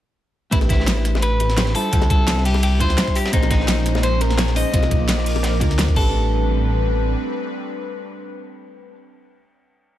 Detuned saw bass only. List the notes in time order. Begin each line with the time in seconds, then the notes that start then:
0.52 A1
1.93 D2
2.20 C2
2.80 D2
3.33 A#1
4.73 C2
5.00 A#1
5.61 D2
5.96 A1